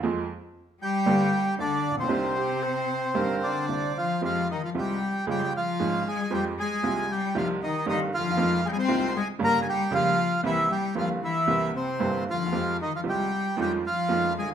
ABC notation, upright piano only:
X:1
M:4/4
L:1/16
Q:1/4=115
K:Cm
V:1 name="Upright piano" clef=bass
[F,,F,A,CA]2 z6 [G,,,G,,D,G,=B,G]2 z2 [D,,D,]2 z/2 =A,,,/2 _B,,,/2 =B,,,/2 | [C,,C,E,CDG]2 z6 [G,,,G,,E,CDG]2 z2 [C,,C,]2 z2 | [K:Fm] [F,,F,A,CG]2 z2 [C,,C,F,A,CG]2 z2 [D,,D,F,A,DA]2 z2 [A,,,A,,F,A,DA]2 z2 | [F,,F,A,CG]2 z2 [C,,C,F,A,CG]2 z2 [C,,C,E,G,CG]2 z2 [G,,,G,,E,G,CG]2 z/2 =D,,/2 E,,/2 =E,,/2 |
[F,,E,F,A,CF]2 z2 [C,,C,E,A,CF]2 z2 [G,,,G,,D,G,B,G]2 z2 [D,,D,G,B,G]2 z2 | [C,,C,=E,B,CG]2 z2 [G,,,G,,E,B,CG]2 z2 [C,,C,E,B,CG]2 z2 [G,,,G,,E,B,CG]2 z/2 =D,,/2 _E,,/2 =E,,/2 | [F,,F,A,CG]2 z2 [C,,C,F,A,CG]2 z2 [F,,E,F,A,DF]2 z2 [F,,E,F,A,DF]2 z/2 =D,,/2 E,,/2 z/2 |]